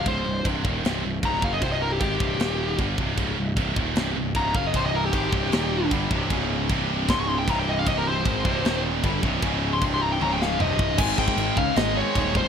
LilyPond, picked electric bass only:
\new Staff \with { instrumentName = "Picked electric bass" } { \clef bass \time 4/4 \key c \phrygian \tempo 4 = 154 des,,8 c,,8 c,,8 ees,,8 c,,8 c,,8 des,,8 fis,,8 | c,,4 aes,,8 c,,8 ees,,4 g,,8 c,,8 | des,,8 c,,8 c,,8 ees,,8 c,,8 c,,8 des,,8 fis,,8 | c,,4 aes,,8 c,,8 ees,,4 g,,8 c,,8 |
des,,4 c,,4 des,,4 c,,4 | c,,4 aes,,8 c,,8 ees,,4 g,,8 c,,8 | des,,4 c,,4 des,,4 c,,4 | aes,,8 aes,,8 aes,,8 des,8 aes,,4 ees,,4 | }